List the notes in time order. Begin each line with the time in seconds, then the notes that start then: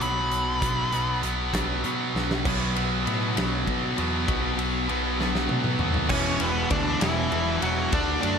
0.01 B1 B2 F#3 B3 B5, closed hi-hat
0.31 B1, closed hi-hat
0.62 B1 B2 F#3 B3, kick, closed hi-hat
0.92 B1 B2 F#3 B3, closed hi-hat
1.23 B1 B2 F#3 B3, closed hi-hat
1.53 B2 F#3 B3, kick, snare, closed hi-hat
1.84 B2 F#3 B3, closed hi-hat
2.15 B1, snare
2.31 snare
2.45 B1 B2 F#3 B3, kick, crash
2.76 B2 F#3 B3, ride
3.07 A2 B2 F#3 B3, ride
3.36 B1 B2 F#3 B3, snare, ride
3.66 B2 F#3, kick, ride
3.70 B3
3.98 E2 B2 F#3 B3, ride
4.28 B1 B2 F#3 B3, kick, ride
4.58 B2 F#3 B3, ride
4.89 B1 B2 F#3 B3, ride
5.20 B1 B2 F#3 B3, snare
5.35 snare
5.48 B1 B2 F#3 B3, high tom
5.64 mid tom
5.79 D#2 B2 F#3 B3, mid tom
5.94 floor tom
6.09 E1 E2 B2 E3 C#4 C#5, kick, crash
6.40 E1 B3 B4, ride
6.70 D2 D4 D5, kick, ride
7.00 E1 E2 B2 E3 E4, snare, ride
7.32 E1 E2 B2 E3, ride
7.62 E1 E2 B2 E3 F#3 F#4, ride
7.92 D2 D3 A3 D4 D5, kick, ride
8.22 F#2 D4 D5, ride